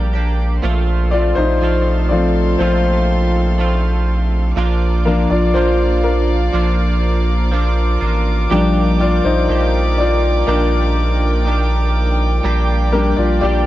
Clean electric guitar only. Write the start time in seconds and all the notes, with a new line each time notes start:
Already playing: G3 A#3 D4 G4
0.13 A#3 D4 G4
0.63 A#2 F3 A3 C4 F4
1.12 A3 C4 F4
1.61 F3 A3 C4 F4
2.59 A#2 F3 A3 C4 F4
3.58 F3 A3 C4 F4
4.56 A#2 F3 A#3 D4 F4
5.05 A#3 D4 F4
5.54 F3 A#3 D4 F4
6.53 A#2 F3 A#3 D4 F4
7.51 F3 A#3 D4 F4
8.01 A#3 D4 F4
8.50 A#2 D#3 A#3 D4 G4
8.99 A#3 D4 G4
9.48 D#3 A#3 D4 G4
10.47 A#2 D#3 A#3 D4 G4
11.45 D#3 A#3 D4 G4
12.43 A#2 G3 A#3 D4 G4
12.92 A#3 D4 G4
13.41 G3 A#3 D4 G4